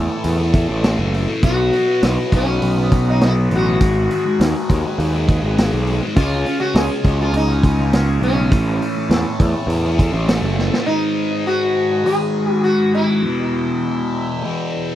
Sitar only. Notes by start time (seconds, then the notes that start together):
Already playing: E4
1.44 F#4
2.09 E4
2.36 C#4
3.10 D#4
3.25 E4
3.56 F#4
6.16 F4
6.60 F#4
6.77 G#4
7.22 F4
7.37 D#4
8.23 C#4
10.86 D#4
11.47 F#4
12.06 G#4
12.53 F#4
12.64 F#4
12.95 E4